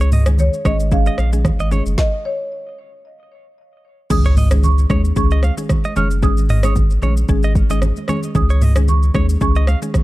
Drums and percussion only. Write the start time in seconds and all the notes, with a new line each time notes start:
0.00 shaker
0.12 mid tom, open hi-hat, high conga, shaker
0.26 cross-stick, shaker
0.39 low conga, shaker
0.53 shaker
0.65 kick, cross-stick, high conga, shaker
0.80 shaker
0.91 kick, shaker
1.06 shaker
1.18 cross-stick, high conga, shaker
1.33 shaker
1.45 kick, cross-stick, low conga, shaker
1.59 high conga, shaker
1.72 high conga, low conga, shaker
1.86 shaker
1.98 kick, snare
4.10 kick, crash, low conga, shaker
4.25 shaker
4.37 mid tom, open hi-hat, high conga, shaker
4.51 cross-stick, shaker
4.63 low conga, shaker
4.78 shaker
4.90 kick, cross-stick, high conga, shaker
5.05 shaker
5.16 kick, shaker
5.31 shaker
5.43 cross-stick, high conga, shaker
5.58 shaker
5.69 kick, cross-stick, low conga, shaker
5.84 high conga, shaker
5.96 high conga, low conga, shaker
6.11 shaker
6.23 kick, low conga, shaker
6.37 shaker
6.49 mid tom, open hi-hat, high conga, shaker
6.63 cross-stick, shaker
6.76 kick, low conga, shaker
6.90 shaker
7.02 high conga, shaker
7.17 shaker
7.28 kick, shaker
7.43 shaker
7.55 kick, high conga, shaker
7.70 shaker
7.82 cross-stick, low conga, shaker
7.96 high conga, shaker
8.08 cross-stick, high conga, low conga, shaker
8.23 shaker
8.35 kick, low conga, shaker
8.50 shaker
8.61 mid tom, open hi-hat, high conga, shaker
8.76 cross-stick, shaker
8.88 low conga, shaker
9.03 shaker
9.14 kick, cross-stick, high conga, shaker
9.29 shaker
9.41 kick, shaker
9.55 shaker
9.67 cross-stick, high conga, shaker
9.82 shaker
9.94 kick, cross-stick, low conga, shaker